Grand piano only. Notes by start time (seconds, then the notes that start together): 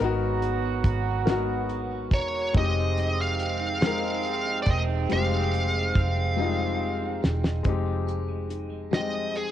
Already playing: A#4
0.00 B3 D#4 F#4
1.25 B3 D#4 A#4
1.30 F#4
2.53 G#3 C4 D#4
2.58 G4
3.81 G#3 C4 D#4
3.87 A#4
5.09 G3 C4 D#4
5.15 G#3 G4
6.36 G3 C4 D#4
6.42 G#3 F4
7.63 G#3 C4 D#4
7.68 G4
8.91 G3 C4 D#4
8.96 G#3 G5